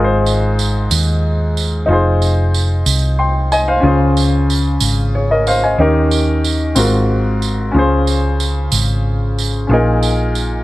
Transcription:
Already playing: fingered electric bass G#1, upright piano G#2 D#4 F4 G#4
0.04 upright piano C5
0.26 tambourine
0.59 tambourine
0.91 fingered electric bass D#2, tambourine
1.57 tambourine
1.86 fingered electric bass F1, upright piano D#4 F4
1.91 upright piano G#4 C5
2.22 tambourine
2.54 tambourine
2.86 fingered electric bass C2, tambourine
3.19 upright piano G5 C6
3.52 upright piano D#5 G#5, tambourine
3.68 upright piano C5 F5
3.80 fingered electric bass C#2, upright piano C#3 C#4 F4
3.85 upright piano G#4 C5
4.17 tambourine
4.50 tambourine
4.80 fingered electric bass G#1, tambourine
5.15 upright piano G#4 C#5
5.31 upright piano A#4 D#5
5.47 upright piano C5 F5, tambourine
5.64 upright piano D#5 G#5
5.78 fingered electric bass D#2, upright piano D#3 C#4 D#4 G4 A#4
6.11 tambourine
6.44 tambourine
6.75 fingered electric bass G#1, upright piano G#2 C4 F4 F#4 A#4, tambourine
7.42 tambourine
7.72 fingered electric bass C#2, upright piano C#3 C#4 F4
7.76 upright piano G#4 C5
8.07 tambourine
8.40 tambourine
8.72 fingered electric bass G#1, tambourine
9.38 tambourine
9.67 fingered electric bass A#1, upright piano A#2 C#4 F4 G#4
9.73 upright piano D#4 A#4
10.03 tambourine
10.35 tambourine

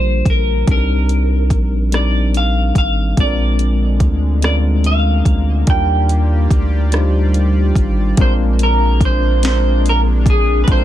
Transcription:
Already playing: analog synth bass A#1, tine electric piano D3 G3 A#3 D4 F4 A#4 C5, clean electric guitar C5
0.26 analog synth bass A#1, kick, closed hi-hat
0.30 clean electric guitar A#4
0.67 analog synth bass C2, tine electric piano G3 C4 D4 D#4 A4, clean electric guitar A#4, kick, closed hi-hat
0.77 tine electric piano A#4
1.09 closed hi-hat
1.50 analog synth bass A#1, kick, closed hi-hat
1.92 tine electric piano G3 C4 D4 D#4 A#4, clean electric guitar D5, cross-stick, closed hi-hat
2.34 clean electric guitar F5, closed hi-hat
2.75 analog synth bass G#1, clean electric guitar F5, kick, closed hi-hat
3.16 analog synth bass A#1, analog synth pad D3 G#3 A#3, tine electric piano G#3 C4 D4 F4, kick, closed hi-hat
3.20 tine electric piano A4, clean electric guitar D5
3.27 tine electric piano A#4
3.59 closed hi-hat
4.00 analog synth bass D2, kick, closed hi-hat
4.42 tine electric piano G#3 C4 C#4 F4 A#4, clean electric guitar D5, cross-stick, closed hi-hat
4.50 tine electric piano D4
4.84 clean electric guitar F5, closed hi-hat
5.25 analog synth bass D2, kick, closed hi-hat
5.66 analog synth bass D#2, analog synth pad G3 F4 G4 D5, tine electric piano G3 D4 D#4 F4, clean electric guitar G5, kick, closed hi-hat
5.71 tine electric piano A#4
6.09 closed hi-hat
6.51 analog synth bass D2, kick, closed hi-hat
6.92 tine electric piano G3 D4 D#4 F4 C5, cross-stick, closed hi-hat
7.34 closed hi-hat
7.75 analog synth bass G#1, kick, closed hi-hat
8.17 analog synth bass A#1, analog synth pad G#3 A#3 D4, tine electric piano G#3 C4 D4 F4 A#4, kick, closed hi-hat
8.21 clean electric guitar C5
8.59 closed hi-hat
8.63 clean electric guitar A#4
9.01 kick, closed hi-hat
9.05 clean electric guitar C5
9.43 tine electric piano G#3 C4 D4 F4 A#4, snare, closed hi-hat
9.47 clean electric guitar C5
9.86 clean electric guitar A#4, closed hi-hat
10.26 kick, closed hi-hat
10.30 clean electric guitar G#4
10.64 analog synth pad C4, clean electric guitar B4, kick, closed hi-hat
10.68 analog synth bass A#1, tine electric piano G#3 C4 D4 F4 A4, clean electric guitar C5
10.78 tine electric piano A#4

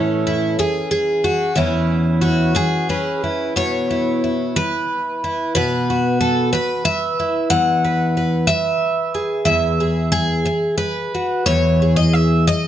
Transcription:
Already playing: twelve-string acoustic guitar A2 E3 C#4 E4 A4
0.27 twelve-string acoustic guitar E4
0.59 twelve-string acoustic guitar G#4, muted twelve-string acoustic guitar stroke
0.91 twelve-string acoustic guitar G#4
1.24 twelve-string acoustic guitar F#4
1.56 twelve-string acoustic guitar E2 E3 C#4 E4
2.21 twelve-string acoustic guitar C#4 F#4
2.55 twelve-string acoustic guitar G#4, muted twelve-string acoustic guitar stroke
2.89 twelve-string acoustic guitar C#4 B4
3.24 twelve-string acoustic guitar E4
3.56 twelve-string acoustic guitar B2 C#5
3.91 twelve-string acoustic guitar E4
4.24 twelve-string acoustic guitar E4
4.56 twelve-string acoustic guitar B4, muted twelve-string acoustic guitar stroke
5.24 twelve-string acoustic guitar E4
5.55 twelve-string acoustic guitar B2 B4
5.90 twelve-string acoustic guitar F#4
6.21 twelve-string acoustic guitar A4
6.53 twelve-string acoustic guitar B4, muted twelve-string acoustic guitar stroke
6.85 twelve-string acoustic guitar E5
7.19 twelve-string acoustic guitar E4
7.50 twelve-string acoustic guitar E2 F#5
7.85 twelve-string acoustic guitar B4
8.17 twelve-string acoustic guitar B4
8.47 twelve-string acoustic guitar E5, muted twelve-string acoustic guitar stroke
9.14 twelve-string acoustic guitar G#4
9.45 twelve-string acoustic guitar E2 E5
9.80 twelve-string acoustic guitar G#4
10.12 twelve-string acoustic guitar G#4
10.45 muted twelve-string acoustic guitar stroke
10.78 twelve-string acoustic guitar B4
11.14 twelve-string acoustic guitar F#4
11.46 twelve-string acoustic guitar E2 C#5
11.82 twelve-string acoustic guitar G#4
11.96 twelve-string acoustic guitar D#5
12.13 twelve-string acoustic guitar E5
12.47 twelve-string acoustic guitar D#5, muted twelve-string acoustic guitar stroke

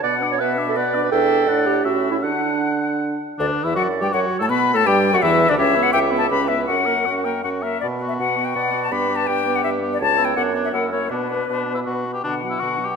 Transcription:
0.02 bassoon B2, french horn B3, clarinet D5, flute F#5, oboe F#5
0.21 french horn D4, oboe D5
0.32 clarinet C#5
0.40 french horn B3, clarinet B4, flute E5, oboe F#5
0.58 french horn D4, oboe D5
0.69 clarinet A4
0.76 french horn B3, clarinet B4, flute D5, oboe F#5
0.94 french horn D4, oboe D5
1.04 clarinet B4
1.11 bassoon E2, french horn D4, clarinet A4, flute E5, oboe G5
1.47 bassoon A2, french horn D4, flute D5, oboe F#5
1.67 clarinet G4
1.84 bassoon A2, french horn C#4, clarinet F#4, flute E5, oboe E5
2.11 clarinet E4
2.22 bassoon D3, clarinet D4, french horn D4, flute F#5, oboe F#5
3.39 bassoon D2, french horn D3, oboe D4, clarinet B4, flute D5
3.64 bassoon E2, french horn E3, oboe E4, flute E5
3.76 bassoon F#2, french horn F#3, oboe F#4, clarinet D5, flute F#5
4.01 bassoon G2, french horn G3, oboe G4, flute G5
4.13 bassoon F#2, french horn F#3, oboe F#4, clarinet C#5, flute F#5
4.39 bassoon A2, french horn A3, oboe A4, flute A5
4.50 bassoon B2, french horn B3, clarinet B4, oboe B4, flute B5
4.74 bassoon A2, french horn A3, oboe A4, flute A5
4.86 bassoon G2, french horn G3, oboe G4, clarinet D5, flute G5
5.13 bassoon F#2, french horn F#3, oboe F#4, flute F#5
5.22 bassoon E2, french horn E3, oboe E4, clarinet B4, flute E5
5.49 bassoon D2, french horn D3, oboe D4, flute D5
5.58 bassoon C#2, french horn C#4, oboe G4, clarinet C#5, flute E5
5.75 french horn B3, oboe E4
5.83 flute F#5
5.93 bassoon C#2, french horn C#4, oboe G4, clarinet E5, flute G5
6.11 french horn B3, oboe E4
6.18 flute A5
6.30 bassoon C#2, french horn C#4, oboe G4, clarinet B4, flute B5
6.48 french horn B3, oboe E4, flute E5
6.66 bassoon F#2, french horn C#4, oboe F#4, clarinet A#4, flute F#5
6.86 french horn A#3, oboe A#4
7.06 bassoon F#2, french horn C#4, oboe F#4
7.24 french horn A#3, oboe A#4, flute G5
7.43 bassoon F#2, french horn C#4, oboe F#4, flute F#5
7.61 french horn A#3, oboe A#4, flute E5
7.81 bassoon B2, flute D5
8.01 french horn B3, oboe F#4
8.08 flute E5
8.19 bassoon B2, clarinet B4, flute F#5
8.37 french horn B3, oboe F#4
8.45 flute G5
8.55 bassoon B2, clarinet D5, flute F#5
8.74 french horn B3, oboe F#4
8.83 flute A5
8.91 bassoon G2, french horn B3, oboe G4, clarinet B4, flute B5
9.09 french horn B3, oboe G4
9.16 flute A5
9.27 bassoon G2, flute G5
9.46 french horn B3, oboe G4
9.56 flute F#5
9.64 bassoon G2, flute E5
9.82 french horn B3, oboe G4
9.93 flute D5
10.00 bassoon C#2, clarinet C#5, flute A5
10.18 french horn B3, oboe E4
10.25 flute G5
10.36 bassoon F#2, french horn B3, oboe D4, flute F#5
10.54 french horn B3, oboe D4
10.64 flute E5
10.72 bassoon F#2, french horn A#3, oboe E4, clarinet A#4, flute F#5
10.91 french horn A#3, oboe E4, flute C#5
11.10 bassoon B2, french horn B3, oboe D4, flute B4, clarinet D5
11.30 french horn B3, oboe D4
11.49 bassoon B2, oboe D4
11.67 french horn B3
11.75 oboe E4
11.86 bassoon B2, oboe F#4
12.07 french horn B3
12.13 oboe G4
12.24 bassoon B2, french horn D3, oboe D4, clarinet D4, flute F#5
12.43 french horn F#3, clarinet B3
12.50 oboe E4
12.60 bassoon B2, french horn D3, clarinet D4, oboe F#4
12.80 french horn F#3, clarinet B3
12.85 oboe G4

